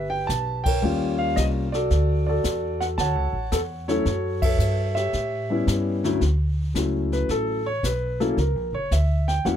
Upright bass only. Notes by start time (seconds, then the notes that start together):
Already playing: G1
0.29 B1
0.83 D#2
1.37 C2
1.91 D2
2.44 E2
2.98 D2
3.15 C#2
3.33 A1
3.52 E2
4.06 F#2
4.58 G2
5.14 A2
5.67 G2
6.21 D2
6.75 C#2
7.29 A1
7.83 B1
8.37 C#2
8.55 A#1
8.73 F#1
8.91 D2
9.45 E2